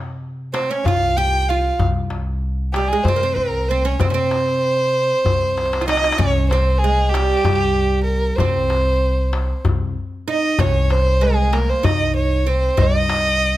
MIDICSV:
0, 0, Header, 1, 5, 480
1, 0, Start_track
1, 0, Tempo, 627615
1, 1374, Time_signature, 7, 3, 24, 8
1, 10379, End_track
2, 0, Start_track
2, 0, Title_t, "Violin"
2, 0, Program_c, 0, 40
2, 409, Note_on_c, 0, 72, 79
2, 533, Note_on_c, 0, 73, 77
2, 545, Note_off_c, 0, 72, 0
2, 649, Note_on_c, 0, 77, 94
2, 661, Note_off_c, 0, 73, 0
2, 892, Note_on_c, 0, 79, 93
2, 904, Note_off_c, 0, 77, 0
2, 1136, Note_on_c, 0, 77, 77
2, 1148, Note_off_c, 0, 79, 0
2, 1375, Note_off_c, 0, 77, 0
2, 2090, Note_on_c, 0, 67, 77
2, 2203, Note_on_c, 0, 68, 84
2, 2214, Note_off_c, 0, 67, 0
2, 2322, Note_on_c, 0, 72, 91
2, 2333, Note_off_c, 0, 68, 0
2, 2568, Note_on_c, 0, 70, 81
2, 2579, Note_off_c, 0, 72, 0
2, 2815, Note_on_c, 0, 72, 81
2, 2827, Note_off_c, 0, 70, 0
2, 2951, Note_on_c, 0, 73, 78
2, 2962, Note_off_c, 0, 72, 0
2, 3055, Note_on_c, 0, 72, 99
2, 3066, Note_off_c, 0, 73, 0
2, 4494, Note_off_c, 0, 72, 0
2, 4498, Note_on_c, 0, 75, 86
2, 4727, Note_on_c, 0, 73, 100
2, 4738, Note_off_c, 0, 75, 0
2, 4962, Note_off_c, 0, 73, 0
2, 4967, Note_on_c, 0, 72, 84
2, 5187, Note_on_c, 0, 68, 98
2, 5199, Note_off_c, 0, 72, 0
2, 5421, Note_on_c, 0, 67, 98
2, 5432, Note_off_c, 0, 68, 0
2, 6140, Note_off_c, 0, 67, 0
2, 6145, Note_on_c, 0, 70, 81
2, 6395, Note_on_c, 0, 72, 86
2, 6407, Note_off_c, 0, 70, 0
2, 7368, Note_off_c, 0, 72, 0
2, 7876, Note_on_c, 0, 75, 80
2, 8106, Note_on_c, 0, 73, 82
2, 8118, Note_off_c, 0, 75, 0
2, 8343, Note_on_c, 0, 72, 94
2, 8354, Note_off_c, 0, 73, 0
2, 8585, Note_on_c, 0, 68, 99
2, 8596, Note_off_c, 0, 72, 0
2, 8815, Note_on_c, 0, 70, 85
2, 8827, Note_off_c, 0, 68, 0
2, 8943, Note_on_c, 0, 72, 85
2, 8954, Note_off_c, 0, 70, 0
2, 9055, Note_on_c, 0, 75, 88
2, 9066, Note_off_c, 0, 72, 0
2, 9293, Note_off_c, 0, 75, 0
2, 9298, Note_on_c, 0, 73, 84
2, 9550, Note_on_c, 0, 72, 85
2, 9561, Note_off_c, 0, 73, 0
2, 9798, Note_on_c, 0, 75, 106
2, 9809, Note_off_c, 0, 72, 0
2, 10379, Note_off_c, 0, 75, 0
2, 10379, End_track
3, 0, Start_track
3, 0, Title_t, "Oud"
3, 0, Program_c, 1, 24
3, 410, Note_on_c, 1, 60, 68
3, 535, Note_off_c, 1, 60, 0
3, 540, Note_on_c, 1, 61, 70
3, 660, Note_off_c, 1, 61, 0
3, 671, Note_on_c, 1, 65, 70
3, 897, Note_off_c, 1, 65, 0
3, 900, Note_on_c, 1, 67, 87
3, 1144, Note_off_c, 1, 67, 0
3, 1148, Note_on_c, 1, 65, 67
3, 1365, Note_off_c, 1, 65, 0
3, 2111, Note_on_c, 1, 55, 69
3, 2227, Note_off_c, 1, 55, 0
3, 2238, Note_on_c, 1, 56, 81
3, 2351, Note_off_c, 1, 56, 0
3, 2357, Note_on_c, 1, 60, 72
3, 2401, Note_off_c, 1, 60, 0
3, 2418, Note_on_c, 1, 58, 68
3, 2457, Note_off_c, 1, 58, 0
3, 2471, Note_on_c, 1, 60, 69
3, 2826, Note_off_c, 1, 60, 0
3, 2835, Note_on_c, 1, 60, 83
3, 2941, Note_off_c, 1, 60, 0
3, 2944, Note_on_c, 1, 61, 80
3, 3061, Note_off_c, 1, 61, 0
3, 3064, Note_on_c, 1, 60, 82
3, 3111, Note_off_c, 1, 60, 0
3, 3137, Note_on_c, 1, 61, 63
3, 3164, Note_off_c, 1, 61, 0
3, 3167, Note_on_c, 1, 60, 80
3, 4445, Note_off_c, 1, 60, 0
3, 4448, Note_on_c, 1, 65, 57
3, 4492, Note_off_c, 1, 65, 0
3, 4495, Note_on_c, 1, 63, 81
3, 4726, Note_off_c, 1, 63, 0
3, 4729, Note_on_c, 1, 61, 89
3, 4982, Note_off_c, 1, 61, 0
3, 4990, Note_on_c, 1, 60, 80
3, 5231, Note_on_c, 1, 56, 82
3, 5232, Note_off_c, 1, 60, 0
3, 5464, Note_off_c, 1, 56, 0
3, 5467, Note_on_c, 1, 55, 80
3, 6393, Note_off_c, 1, 55, 0
3, 6425, Note_on_c, 1, 60, 71
3, 7352, Note_off_c, 1, 60, 0
3, 7859, Note_on_c, 1, 63, 79
3, 8100, Note_off_c, 1, 63, 0
3, 8103, Note_on_c, 1, 61, 73
3, 8550, Note_off_c, 1, 61, 0
3, 8575, Note_on_c, 1, 56, 72
3, 8812, Note_off_c, 1, 56, 0
3, 8815, Note_on_c, 1, 58, 65
3, 9050, Note_on_c, 1, 63, 73
3, 9064, Note_off_c, 1, 58, 0
3, 9530, Note_off_c, 1, 63, 0
3, 9533, Note_on_c, 1, 60, 75
3, 9766, Note_off_c, 1, 60, 0
3, 9769, Note_on_c, 1, 63, 80
3, 10379, Note_off_c, 1, 63, 0
3, 10379, End_track
4, 0, Start_track
4, 0, Title_t, "Upright bass"
4, 0, Program_c, 2, 32
4, 0, Note_on_c, 2, 48, 84
4, 548, Note_off_c, 2, 48, 0
4, 645, Note_on_c, 2, 36, 77
4, 1292, Note_off_c, 2, 36, 0
4, 1372, Note_on_c, 2, 36, 93
4, 2232, Note_off_c, 2, 36, 0
4, 2328, Note_on_c, 2, 48, 80
4, 2546, Note_off_c, 2, 48, 0
4, 2570, Note_on_c, 2, 36, 81
4, 3003, Note_off_c, 2, 36, 0
4, 3061, Note_on_c, 2, 48, 91
4, 3918, Note_off_c, 2, 48, 0
4, 4013, Note_on_c, 2, 36, 73
4, 4659, Note_off_c, 2, 36, 0
4, 4736, Note_on_c, 2, 36, 108
4, 5596, Note_off_c, 2, 36, 0
4, 5700, Note_on_c, 2, 36, 84
4, 6343, Note_off_c, 2, 36, 0
4, 6420, Note_on_c, 2, 36, 100
4, 7277, Note_off_c, 2, 36, 0
4, 7382, Note_on_c, 2, 36, 90
4, 7596, Note_off_c, 2, 36, 0
4, 8096, Note_on_c, 2, 36, 108
4, 8954, Note_off_c, 2, 36, 0
4, 9052, Note_on_c, 2, 36, 91
4, 9697, Note_off_c, 2, 36, 0
4, 9773, Note_on_c, 2, 36, 100
4, 10379, Note_off_c, 2, 36, 0
4, 10379, End_track
5, 0, Start_track
5, 0, Title_t, "Darbuka"
5, 415, Note_on_c, 9, 63, 70
5, 492, Note_off_c, 9, 63, 0
5, 656, Note_on_c, 9, 64, 79
5, 732, Note_off_c, 9, 64, 0
5, 778, Note_on_c, 9, 62, 26
5, 855, Note_off_c, 9, 62, 0
5, 898, Note_on_c, 9, 62, 24
5, 974, Note_off_c, 9, 62, 0
5, 1373, Note_on_c, 9, 64, 78
5, 1450, Note_off_c, 9, 64, 0
5, 1609, Note_on_c, 9, 63, 56
5, 1685, Note_off_c, 9, 63, 0
5, 2096, Note_on_c, 9, 63, 72
5, 2172, Note_off_c, 9, 63, 0
5, 2332, Note_on_c, 9, 64, 86
5, 2409, Note_off_c, 9, 64, 0
5, 2455, Note_on_c, 9, 62, 27
5, 2532, Note_off_c, 9, 62, 0
5, 2575, Note_on_c, 9, 62, 24
5, 2651, Note_off_c, 9, 62, 0
5, 2822, Note_on_c, 9, 62, 28
5, 2898, Note_off_c, 9, 62, 0
5, 3056, Note_on_c, 9, 64, 90
5, 3133, Note_off_c, 9, 64, 0
5, 3298, Note_on_c, 9, 63, 63
5, 3374, Note_off_c, 9, 63, 0
5, 4020, Note_on_c, 9, 64, 78
5, 4096, Note_off_c, 9, 64, 0
5, 4143, Note_on_c, 9, 62, 25
5, 4220, Note_off_c, 9, 62, 0
5, 4264, Note_on_c, 9, 63, 51
5, 4325, Note_on_c, 9, 62, 49
5, 4341, Note_off_c, 9, 63, 0
5, 4383, Note_on_c, 9, 63, 68
5, 4402, Note_off_c, 9, 62, 0
5, 4445, Note_on_c, 9, 62, 68
5, 4460, Note_off_c, 9, 63, 0
5, 4506, Note_on_c, 9, 63, 72
5, 4521, Note_off_c, 9, 62, 0
5, 4567, Note_on_c, 9, 62, 76
5, 4583, Note_off_c, 9, 63, 0
5, 4620, Note_on_c, 9, 63, 73
5, 4643, Note_off_c, 9, 62, 0
5, 4683, Note_on_c, 9, 62, 90
5, 4696, Note_off_c, 9, 63, 0
5, 4736, Note_on_c, 9, 64, 76
5, 4760, Note_off_c, 9, 62, 0
5, 4812, Note_off_c, 9, 64, 0
5, 4978, Note_on_c, 9, 63, 58
5, 5055, Note_off_c, 9, 63, 0
5, 5461, Note_on_c, 9, 63, 73
5, 5538, Note_off_c, 9, 63, 0
5, 5695, Note_on_c, 9, 64, 91
5, 5772, Note_off_c, 9, 64, 0
5, 6181, Note_on_c, 9, 62, 27
5, 6258, Note_off_c, 9, 62, 0
5, 6411, Note_on_c, 9, 64, 85
5, 6488, Note_off_c, 9, 64, 0
5, 6653, Note_on_c, 9, 63, 57
5, 6730, Note_off_c, 9, 63, 0
5, 7136, Note_on_c, 9, 63, 69
5, 7212, Note_off_c, 9, 63, 0
5, 7378, Note_on_c, 9, 64, 94
5, 7454, Note_off_c, 9, 64, 0
5, 7859, Note_on_c, 9, 62, 25
5, 7936, Note_off_c, 9, 62, 0
5, 8096, Note_on_c, 9, 64, 92
5, 8173, Note_off_c, 9, 64, 0
5, 8339, Note_on_c, 9, 63, 66
5, 8415, Note_off_c, 9, 63, 0
5, 8819, Note_on_c, 9, 63, 65
5, 8896, Note_off_c, 9, 63, 0
5, 9058, Note_on_c, 9, 64, 95
5, 9134, Note_off_c, 9, 64, 0
5, 9537, Note_on_c, 9, 62, 28
5, 9613, Note_off_c, 9, 62, 0
5, 9772, Note_on_c, 9, 64, 83
5, 9848, Note_off_c, 9, 64, 0
5, 10014, Note_on_c, 9, 63, 75
5, 10091, Note_off_c, 9, 63, 0
5, 10379, End_track
0, 0, End_of_file